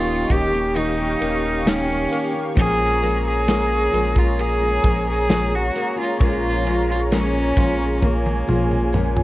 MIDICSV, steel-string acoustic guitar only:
0, 0, Header, 1, 2, 480
1, 0, Start_track
1, 0, Key_signature, -5, "minor"
1, 0, Tempo, 909091
1, 1353, Time_signature, 4, 2, 24, 8
1, 4875, End_track
2, 0, Start_track
2, 0, Title_t, "Steel-string acoustic guitar"
2, 0, Program_c, 0, 25
2, 0, Note_on_c, 0, 51, 82
2, 0, Note_on_c, 0, 58, 84
2, 0, Note_on_c, 0, 61, 92
2, 0, Note_on_c, 0, 67, 85
2, 145, Note_off_c, 0, 51, 0
2, 150, Note_off_c, 0, 58, 0
2, 151, Note_on_c, 0, 51, 70
2, 155, Note_off_c, 0, 61, 0
2, 156, Note_on_c, 0, 58, 71
2, 157, Note_off_c, 0, 67, 0
2, 162, Note_on_c, 0, 61, 72
2, 165, Note_on_c, 0, 67, 66
2, 264, Note_off_c, 0, 67, 0
2, 271, Note_on_c, 0, 67, 60
2, 272, Note_off_c, 0, 51, 0
2, 273, Note_off_c, 0, 61, 0
2, 275, Note_off_c, 0, 58, 0
2, 279, Note_on_c, 0, 61, 57
2, 285, Note_on_c, 0, 58, 48
2, 504, Note_off_c, 0, 67, 0
2, 511, Note_on_c, 0, 67, 61
2, 513, Note_off_c, 0, 61, 0
2, 519, Note_off_c, 0, 58, 0
2, 519, Note_on_c, 0, 61, 50
2, 527, Note_on_c, 0, 58, 52
2, 630, Note_off_c, 0, 58, 0
2, 631, Note_on_c, 0, 51, 64
2, 632, Note_off_c, 0, 67, 0
2, 636, Note_off_c, 0, 61, 0
2, 637, Note_on_c, 0, 58, 68
2, 643, Note_on_c, 0, 61, 75
2, 646, Note_on_c, 0, 67, 72
2, 865, Note_off_c, 0, 51, 0
2, 869, Note_off_c, 0, 58, 0
2, 871, Note_on_c, 0, 51, 89
2, 872, Note_off_c, 0, 61, 0
2, 874, Note_off_c, 0, 67, 0
2, 875, Note_on_c, 0, 58, 103
2, 878, Note_on_c, 0, 61, 87
2, 881, Note_on_c, 0, 67, 96
2, 984, Note_off_c, 0, 67, 0
2, 991, Note_on_c, 0, 67, 56
2, 992, Note_off_c, 0, 51, 0
2, 992, Note_off_c, 0, 61, 0
2, 994, Note_off_c, 0, 58, 0
2, 998, Note_on_c, 0, 61, 52
2, 1005, Note_on_c, 0, 58, 48
2, 1226, Note_off_c, 0, 67, 0
2, 1232, Note_on_c, 0, 67, 60
2, 1233, Note_off_c, 0, 61, 0
2, 1239, Note_off_c, 0, 58, 0
2, 1240, Note_on_c, 0, 61, 51
2, 1247, Note_on_c, 0, 58, 54
2, 1348, Note_on_c, 0, 46, 94
2, 1349, Note_off_c, 0, 61, 0
2, 1351, Note_off_c, 0, 58, 0
2, 1351, Note_on_c, 0, 53, 96
2, 1352, Note_off_c, 0, 67, 0
2, 1353, Note_on_c, 0, 56, 97
2, 1355, Note_on_c, 0, 61, 94
2, 1358, Note_on_c, 0, 65, 94
2, 1583, Note_off_c, 0, 53, 0
2, 1588, Note_off_c, 0, 56, 0
2, 1590, Note_on_c, 0, 53, 61
2, 1591, Note_off_c, 0, 46, 0
2, 1594, Note_off_c, 0, 61, 0
2, 1594, Note_on_c, 0, 56, 67
2, 1596, Note_off_c, 0, 65, 0
2, 1600, Note_on_c, 0, 61, 70
2, 1603, Note_on_c, 0, 65, 70
2, 1827, Note_off_c, 0, 53, 0
2, 1831, Note_off_c, 0, 56, 0
2, 1831, Note_on_c, 0, 46, 77
2, 1832, Note_off_c, 0, 61, 0
2, 1834, Note_off_c, 0, 65, 0
2, 1834, Note_on_c, 0, 53, 77
2, 1837, Note_on_c, 0, 56, 76
2, 1839, Note_on_c, 0, 61, 90
2, 1840, Note_on_c, 0, 65, 87
2, 2061, Note_off_c, 0, 53, 0
2, 2066, Note_off_c, 0, 56, 0
2, 2068, Note_on_c, 0, 53, 73
2, 2071, Note_off_c, 0, 61, 0
2, 2072, Note_off_c, 0, 46, 0
2, 2073, Note_on_c, 0, 56, 83
2, 2076, Note_off_c, 0, 65, 0
2, 2078, Note_on_c, 0, 61, 82
2, 2083, Note_on_c, 0, 65, 83
2, 2179, Note_off_c, 0, 65, 0
2, 2186, Note_on_c, 0, 65, 62
2, 2188, Note_off_c, 0, 61, 0
2, 2190, Note_off_c, 0, 53, 0
2, 2193, Note_off_c, 0, 56, 0
2, 2194, Note_on_c, 0, 61, 51
2, 2200, Note_on_c, 0, 56, 53
2, 2421, Note_off_c, 0, 65, 0
2, 2427, Note_on_c, 0, 65, 55
2, 2428, Note_off_c, 0, 61, 0
2, 2434, Note_off_c, 0, 56, 0
2, 2434, Note_on_c, 0, 61, 54
2, 2441, Note_on_c, 0, 56, 42
2, 2545, Note_off_c, 0, 56, 0
2, 2546, Note_on_c, 0, 53, 66
2, 2550, Note_off_c, 0, 65, 0
2, 2551, Note_off_c, 0, 61, 0
2, 2552, Note_on_c, 0, 56, 71
2, 2557, Note_on_c, 0, 61, 71
2, 2561, Note_on_c, 0, 65, 66
2, 2784, Note_off_c, 0, 53, 0
2, 2786, Note_on_c, 0, 46, 85
2, 2788, Note_off_c, 0, 56, 0
2, 2790, Note_off_c, 0, 61, 0
2, 2790, Note_on_c, 0, 53, 99
2, 2791, Note_off_c, 0, 65, 0
2, 2794, Note_on_c, 0, 56, 94
2, 2796, Note_on_c, 0, 61, 87
2, 2798, Note_on_c, 0, 65, 103
2, 2908, Note_off_c, 0, 61, 0
2, 2910, Note_off_c, 0, 46, 0
2, 2912, Note_off_c, 0, 53, 0
2, 2913, Note_off_c, 0, 56, 0
2, 2914, Note_on_c, 0, 61, 59
2, 2915, Note_off_c, 0, 65, 0
2, 2921, Note_on_c, 0, 56, 47
2, 3147, Note_off_c, 0, 61, 0
2, 3147, Note_on_c, 0, 65, 63
2, 3153, Note_on_c, 0, 61, 52
2, 3154, Note_off_c, 0, 56, 0
2, 3160, Note_on_c, 0, 56, 48
2, 3264, Note_off_c, 0, 56, 0
2, 3264, Note_on_c, 0, 46, 94
2, 3267, Note_off_c, 0, 61, 0
2, 3269, Note_on_c, 0, 53, 102
2, 3270, Note_off_c, 0, 65, 0
2, 3270, Note_on_c, 0, 56, 96
2, 3273, Note_on_c, 0, 61, 95
2, 3276, Note_on_c, 0, 65, 92
2, 3496, Note_off_c, 0, 53, 0
2, 3502, Note_off_c, 0, 56, 0
2, 3503, Note_on_c, 0, 53, 63
2, 3508, Note_off_c, 0, 61, 0
2, 3509, Note_off_c, 0, 46, 0
2, 3509, Note_on_c, 0, 56, 64
2, 3511, Note_off_c, 0, 65, 0
2, 3514, Note_on_c, 0, 61, 63
2, 3518, Note_on_c, 0, 65, 66
2, 3746, Note_off_c, 0, 53, 0
2, 3747, Note_off_c, 0, 56, 0
2, 3748, Note_on_c, 0, 46, 76
2, 3749, Note_off_c, 0, 61, 0
2, 3752, Note_off_c, 0, 65, 0
2, 3752, Note_on_c, 0, 53, 82
2, 3754, Note_on_c, 0, 56, 75
2, 3755, Note_on_c, 0, 61, 82
2, 3759, Note_on_c, 0, 65, 77
2, 3981, Note_off_c, 0, 53, 0
2, 3988, Note_on_c, 0, 53, 71
2, 3989, Note_off_c, 0, 56, 0
2, 3990, Note_off_c, 0, 46, 0
2, 3991, Note_off_c, 0, 61, 0
2, 3995, Note_on_c, 0, 56, 69
2, 3996, Note_off_c, 0, 65, 0
2, 3998, Note_on_c, 0, 61, 63
2, 4004, Note_on_c, 0, 65, 79
2, 4102, Note_off_c, 0, 65, 0
2, 4108, Note_on_c, 0, 65, 51
2, 4110, Note_off_c, 0, 53, 0
2, 4110, Note_off_c, 0, 61, 0
2, 4114, Note_off_c, 0, 56, 0
2, 4117, Note_on_c, 0, 61, 56
2, 4122, Note_on_c, 0, 56, 54
2, 4343, Note_off_c, 0, 65, 0
2, 4349, Note_on_c, 0, 65, 53
2, 4350, Note_off_c, 0, 61, 0
2, 4357, Note_off_c, 0, 56, 0
2, 4357, Note_on_c, 0, 61, 52
2, 4364, Note_on_c, 0, 56, 47
2, 4468, Note_off_c, 0, 56, 0
2, 4469, Note_on_c, 0, 53, 70
2, 4471, Note_off_c, 0, 65, 0
2, 4473, Note_off_c, 0, 61, 0
2, 4474, Note_on_c, 0, 56, 63
2, 4479, Note_on_c, 0, 61, 64
2, 4484, Note_on_c, 0, 65, 80
2, 4708, Note_off_c, 0, 53, 0
2, 4711, Note_off_c, 0, 56, 0
2, 4711, Note_on_c, 0, 46, 77
2, 4712, Note_off_c, 0, 61, 0
2, 4714, Note_on_c, 0, 53, 86
2, 4715, Note_off_c, 0, 65, 0
2, 4718, Note_on_c, 0, 56, 87
2, 4719, Note_on_c, 0, 61, 87
2, 4721, Note_on_c, 0, 65, 81
2, 4828, Note_off_c, 0, 65, 0
2, 4832, Note_off_c, 0, 46, 0
2, 4834, Note_off_c, 0, 53, 0
2, 4834, Note_on_c, 0, 65, 62
2, 4835, Note_off_c, 0, 56, 0
2, 4836, Note_off_c, 0, 61, 0
2, 4843, Note_on_c, 0, 61, 53
2, 4849, Note_on_c, 0, 56, 55
2, 4875, Note_off_c, 0, 56, 0
2, 4875, Note_off_c, 0, 61, 0
2, 4875, Note_off_c, 0, 65, 0
2, 4875, End_track
0, 0, End_of_file